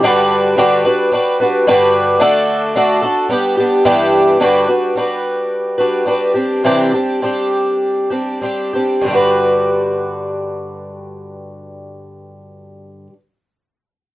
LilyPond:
\new Staff \with { instrumentName = "Twelve-string acoustic guitar" } { \time 4/4 \key g \major \tempo 4 = 104 <g, d g d' fis' b'>4 <g, d g d' fis' b'>8 <g d' fis' b'>8 <g d' fis' b'>8 <g d' fis' b'>8 <g, d g d' fis' b'>4 | <d a d' fis' a'>4 <d a d' fis' a'>8 <d' fis' a'>8 <g b d' g'>8 <g b d' g'>8 <g, e g b d' g'>4 | <g, d g d' fis' b'>8 <g d' fis' b'>8 <g d' fis' b'>4. <g d' fis' b'>8 <g d' fis' b'>8 <g c' d' g'>8 | <c e g c' d' g'>8 <g c' d' g'>8 <g c' d' g'>4. <g c' d' g'>8 <g c' d' g'>8 <g c' d' g'>8 |
<g, d g d' fis' b'>1~ | <g, d g d' fis' b'>1 | }